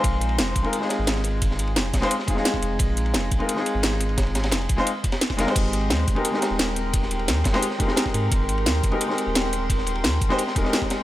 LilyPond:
<<
  \new Staff \with { instrumentName = "Ambient pad" } { \time 4/4 \key bes \dorian \tempo 4 = 174 r1 | r1 | r1 | r1 |
<bes' g'' c'''>1~ | <bes' g'' c'''>1~ | <bes' g'' c'''>1~ | <bes' g'' c'''>1 | }
  \new Staff \with { instrumentName = "Grand piano" } { \time 4/4 \key bes \dorian <aes c' ees' f' c''>4.~ <aes c' ees' f' c''>16 <aes c' ees' f' bes'>16 r16 <aes c' ees' f' aes'>4.~ <aes c' ees' f' aes'>16~ | <aes c' ees' f' aes'>4.~ <aes c' ees' f' aes'>16 <aes c' ees' f' c''>16 r8 <aes c' ees' f' aes'>16 <aes c' ees' f' aes'>4~ <aes c' ees' f' aes'>16~ | <aes c' ees' f' aes'>4.~ <aes c' ees' f' aes'>16 <aes c' ees' f' bes'>16 r16 <aes c' ees' f' aes'>4.~ <aes c' ees' f' aes'>16~ | <aes c' ees' f' aes'>4.~ <aes c' ees' f' aes'>16 <aes c' ees' f' c''>16 r4. <aes c' ees' f' bes'>16 <aes c' ees' g' c''>16~ |
<aes c' ees' g' c''>4.~ <aes c' ees' g' c''>16 <aes c' ees' g' bes'>16 r16 <aes c' ees' g' bes'>4.~ <aes c' ees' g' bes'>16~ | <aes c' ees' g' bes'>4.~ <aes c' ees' g' bes'>16 <aes c' ees' g' c''>16 r8 <aes c' ees' g' bes'>16 <aes c' ees' g' bes'>4~ <aes c' ees' g' bes'>16~ | <aes c' ees' g' bes'>4.~ <aes c' ees' g' bes'>16 <aes c' ees' g' bes'>16 r16 <aes c' ees' g' bes'>4.~ <aes c' ees' g' bes'>16~ | <aes c' ees' g' bes'>4.~ <aes c' ees' g' bes'>16 <aes c' ees' g' c''>16 r8 <aes c' ees' g' bes'>16 <aes c' ees' g' bes'>4~ <aes c' ees' g' bes'>16 | }
  \new Staff \with { instrumentName = "Sub bass" } { \clef bass \time 4/4 \key bes \dorian bes,,4 f,,8 bes,,16 r4 aes,,4~ aes,,16~ | aes,,4 f,,8 bes,,16 r4. r16 f,,8 | bes,,4 f,,8 bes,,16 r4 aes,,4~ aes,,16~ | aes,,4 f,,8 bes,,16 r4. r16 f,,16 r16 |
aes,,4 ees,8 aes,,16 r4 ees,,4~ ees,,16~ | ees,,4 ees,8 aes,,16 r4. r16 aes,8 | aes,,4 ees,8 aes,,16 r4 ees,,4~ ees,,16~ | ees,,4 ees,8 aes,,16 r8. ees,,16 r4 r16 | }
  \new DrumStaff \with { instrumentName = "Drums" } \drummode { \time 4/4 <hh bd cymr>8 <hh cymr>16 cymr16 <hh cymr sn>16 cymr16 <hh bd cymr>16 cymr16 <hh cymr>16 sn16 <hh cymr sn>8 <hh cymr sn>16 sn16 <hh cymr>8 | <hh bd cymr>16 sn16 <hh cymr>16 cymr16 <hh cymr sn>16 cymr16 <hh bd cymr sn>16 <cymr sn>16 <hh cymr>16 sn16 <hh bd cymr>16 sn16 <hh cymr sn>16 <bd sn>16 <hh cymr>8 | <hh bd cymr>8 <hh cymr>16 cymr16 <hh cymr sn>16 cymr16 <hh bd cymr>16 cymr16 <hh cymr>16 sn16 <hh cymr>8 <hh cymr sn>16 sn16 <hh cymr>16 cymr16 | <hh bd cymr sn>16 cymr16 <hh cymr sn>16 <cymr sn>16 <hh cymr sn>16 cymr16 <hh bd cymr>16 sn16 <hh cymr>8 <hh bd cymr>16 <cymr sn>16 <hh cymr sn>16 <bd cymr sn>16 <hh cymr sn>16 <cymr sn>16 |
<cymc hh bd cymr>8 <hh cymr>16 cymr16 <hh cymr sn>16 cymr16 <hh bd cymr>16 <cymr ss>16 <hh cymr>16 sn16 <hh cymr sn>8 <hh cymr sn>16 sn16 <hh cymr>8 | <hh bd cymr>16 sn16 <hh cymr>16 cymr16 <hh cymr sn>16 cymr16 <hh bd cymr sn>16 <cymr ss sn>16 <hh cymr>16 sn16 <hh bd cymr>16 <ss sn>16 <hh cymr sn>16 <bd sn>16 <hh cymr>8 | <hh bd cymr>8 <hh cymr>16 cymr16 <hh cymr sn>16 cymr16 <hh bd cymr>16 <cymr ss>16 <hh cymr>16 sn16 <hh cymr>8 <hh cymr sn>16 sn16 <hh cymr>8 | <hh bd cymr>16 sn16 <hh cymr>16 cymr16 <hh cymr sn>16 cymr16 <hh bd cymr>16 <ss sn>16 <hh cymr>16 sn16 <hh bd cymr>16 <ss sn>16 <hh cymr sn>16 <bd sn>16 <hh cymr sn>8 | }
>>